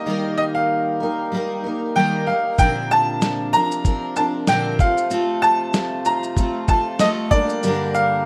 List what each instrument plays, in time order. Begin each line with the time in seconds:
Already playing: harmonium D#3 G3 A#3 G4 A#4, upright piano D#5
0.06 steel-string acoustic guitar D#3 G3 A#3 D#4 A#4
0.38 upright piano D#5
0.55 upright piano F5
1.00 steel-string acoustic guitar A#3 D#4 A#4
1.32 steel-string acoustic guitar G3 A#3 D#4 A#4
1.64 steel-string acoustic guitar A#3 D#4 A#4
1.95 steel-string acoustic guitar D#3 G3 A#3 D#4 A#4, upright piano G5
2.26 steel-string acoustic guitar A#3 D#4 A#4, upright piano F5
2.58 steel-string acoustic guitar A#2 D3 F3 C4 D4 A#4, harmonium C3 F3 D4, upright piano G5, kick, shaker
2.91 upright piano A5, shaker
3.21 snare, shaker
3.53 steel-string acoustic guitar F3 C4 D4 A#4, upright piano A#5, shaker
3.71 shaker
3.84 steel-string acoustic guitar F3 C4 D4 A#4, kick, shaker
4.16 steel-string acoustic guitar F3 C4 D4 A#4, upright piano A5, shaker
4.47 steel-string acoustic guitar A#2 D3 F3 C4 D4 A#4, upright piano G5, snare, shaker
4.79 harmonium A3 F4 C5, steel-string acoustic guitar C4 F4 A4, upright piano F5, kick, shaker
4.98 shaker
5.10 steel-string acoustic guitar A3 C4 F4 A4, shaker
5.42 upright piano A5, shaker
5.73 snare, shaker
6.05 steel-string acoustic guitar C4 F4, upright piano A#5, shaker
6.23 shaker
6.36 steel-string acoustic guitar A3 C4 F4, kick, shaker
6.68 steel-string acoustic guitar C4 F4 A4, upright piano A5, kick, shaker
6.99 steel-string acoustic guitar A3 C4 F4 A4, upright piano D#5, snare, shaker
7.31 harmonium D3 G3 A#3 G4 A#4, steel-string acoustic guitar G3 A#3 D4 A#4, upright piano D5, kick, shaker
7.49 shaker
7.63 steel-string acoustic guitar G2 D3 G3 A#3 D4 A#4, shaker
7.94 upright piano F5, shaker